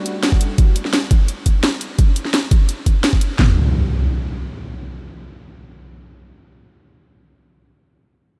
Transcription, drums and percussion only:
0.06 closed hi-hat
0.23 snare, closed hi-hat
0.32 kick
0.41 closed hi-hat
0.58 kick, closed hi-hat
0.76 closed hi-hat
0.85 snare
0.93 snare, closed hi-hat
1.11 kick, closed hi-hat
1.28 closed hi-hat
1.46 kick, closed hi-hat
1.63 snare, closed hi-hat
1.81 closed hi-hat
1.99 kick, closed hi-hat
2.16 closed hi-hat
2.25 snare
2.34 snare, closed hi-hat
2.51 kick, closed hi-hat
2.69 closed hi-hat
2.86 kick, closed hi-hat
3.04 snare, closed hi-hat
3.13 kick
3.21 closed hi-hat
3.39 kick, snare, clap

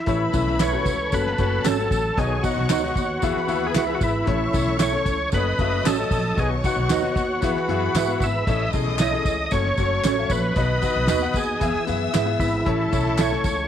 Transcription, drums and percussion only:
0.06 kick, closed hi-hat, tambourine
0.33 kick, closed hi-hat, tambourine
0.47 snare
0.59 snare, clap, closed hi-hat, tambourine
0.85 kick, closed hi-hat, tambourine
1.12 kick, closed hi-hat, tambourine
1.27 snare
1.38 kick, closed hi-hat, tambourine
1.65 snare, clap, closed hi-hat, tambourine
1.91 kick, closed hi-hat, tambourine
2.18 kick, closed hi-hat, tambourine
2.43 kick, closed hi-hat, tambourine
2.57 snare
2.69 snare, clap, closed hi-hat, tambourine
2.83 snare
2.96 kick, closed hi-hat, tambourine
3.22 kick, closed hi-hat, tambourine
3.37 snare
3.48 closed hi-hat, tambourine
3.75 snare, clap, closed hi-hat, tambourine
4.01 kick, closed hi-hat, tambourine
4.27 kick, closed hi-hat
4.53 kick, closed hi-hat, tambourine
4.67 snare
4.80 snare, clap, closed hi-hat, tambourine
4.93 snare
5.06 kick, closed hi-hat, tambourine
5.32 kick, closed hi-hat, tambourine
5.59 kick, closed hi-hat, tambourine
5.85 snare, clap, closed hi-hat, tambourine
6.11 kick, open hi-hat, tambourine
6.38 kick, closed hi-hat, tambourine
6.64 kick, closed hi-hat, tambourine
6.90 snare, clap, closed hi-hat, tambourine
7.04 snare
7.16 kick, closed hi-hat, tambourine
7.42 kick, closed hi-hat, tambourine
7.57 snare
7.69 closed hi-hat
7.95 snare, clap, closed hi-hat, tambourine
8.20 kick, closed hi-hat, tambourine
8.47 kick, closed hi-hat, tambourine
8.73 kick, closed hi-hat, tambourine
8.88 snare
8.99 snare, clap, closed hi-hat, tambourine
9.14 snare
9.25 kick, closed hi-hat, tambourine
9.51 kick, closed hi-hat, tambourine
9.65 snare
9.77 kick, closed hi-hat, tambourine
10.04 snare, clap, closed hi-hat, tambourine
10.30 kick, closed hi-hat, tambourine
10.56 kick, closed hi-hat, tambourine
10.82 kick, closed hi-hat, tambourine
10.95 snare
11.07 snare, clap, closed hi-hat, tambourine
11.22 snare
11.33 kick, closed hi-hat, tambourine
11.61 kick, closed hi-hat, tambourine
11.75 snare
11.87 closed hi-hat, tambourine
12.14 snare, clap, closed hi-hat, tambourine
12.40 kick, open hi-hat, tambourine
12.66 kick, closed hi-hat
12.92 kick, closed hi-hat, tambourine
13.06 snare
13.18 snare, clap, closed hi-hat, tambourine
13.32 snare
13.44 kick, closed hi-hat, tambourine

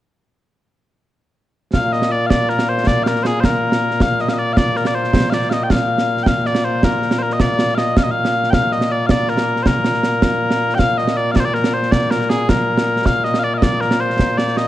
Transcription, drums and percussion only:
1.73 concert bass drum, snare
1.93 snare
2.02 snare
2.30 concert bass drum, snare
2.49 snare
2.59 snare
2.78 snare
2.87 concert bass drum, snare
3.06 snare
3.16 snare
3.25 snare
3.44 concert bass drum, snare
3.72 snare
3.91 snare
4.00 concert bass drum, snare
4.19 snare
4.28 snare
4.57 concert bass drum, snare
4.76 snare
4.85 snare
5.04 snare
5.13 concert bass drum, snare
5.32 snare
5.42 snare
5.51 snare
5.70 concert bass drum, snare
5.98 snare
6.17 snare
6.26 concert bass drum, snare
6.45 snare
6.55 snare
6.83 concert bass drum, snare
7.02 snare
7.11 snare
7.30 snare
7.40 concert bass drum, snare
7.59 snare
7.68 snare
7.78 snare
7.97 concert bass drum, snare
8.25 snare
8.44 snare
8.53 concert bass drum, snare
8.72 snare
8.81 snare
9.09 concert bass drum, snare
9.28 snare
9.38 snare
9.56 snare
9.66 concert bass drum, snare
9.84 snare
9.94 snare
10.03 snare
10.22 concert bass drum, snare
10.51 snare
10.70 snare
10.79 concert bass drum, snare
10.98 snare
11.08 snare
11.36 concert bass drum, snare
11.55 snare
11.64 snare
11.83 snare
11.92 concert bass drum, snare
12.11 snare
12.21 snare
12.30 snare
12.49 concert bass drum, snare
12.78 snare
12.96 snare
13.06 concert bass drum, snare
13.25 snare
13.34 snare
13.62 concert bass drum, snare
13.81 snare
13.91 snare
14.10 snare
14.19 concert bass drum, snare
14.38 snare
14.48 snare
14.57 snare

